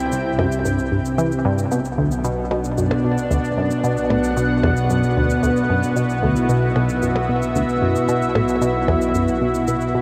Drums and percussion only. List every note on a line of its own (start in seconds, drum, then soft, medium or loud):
0.12 cabasa medium
0.39 percussion blips medium
0.52 cabasa medium
0.65 cabasa medium
0.79 cabasa soft
1.05 cabasa medium
1.19 cabasa medium
1.32 cabasa soft
1.58 cabasa medium
1.72 cabasa medium
1.85 cabasa soft
2.11 cabasa medium
2.24 cabasa medium
2.51 percussion blips soft
2.64 cabasa medium
2.78 cabasa medium
2.91 percussion blips medium
3.18 cabasa soft
3.31 cabasa medium
3.44 cabasa soft
3.71 cabasa medium
3.84 cabasa medium
3.97 cabasa soft
4.10 percussion blips medium
4.24 cabasa medium
4.37 cabasa medium
4.63 percussion blips soft
4.77 cabasa medium
4.90 cabasa medium
5.03 cabasa soft
5.30 cabasa soft
5.43 cabasa medium
5.56 cabasa soft
5.83 cabasa medium
5.96 cabasa medium
6.09 cabasa soft
6.36 cabasa soft
6.49 cabasa medium
6.76 percussion blips medium
6.89 cabasa soft
7.02 cabasa medium
7.16 percussion blips medium
7.42 cabasa medium
7.56 cabasa medium
7.69 cabasa soft
7.95 cabasa medium
8.09 cabasa medium
8.22 cabasa soft
8.35 percussion blips medium
8.48 cabasa soft
8.62 cabasa medium
8.88 percussion blips medium
9.01 cabasa soft
9.15 cabasa medium
9.28 cabasa soft
9.54 cabasa medium
9.67 cabasa medium
9.81 cabasa soft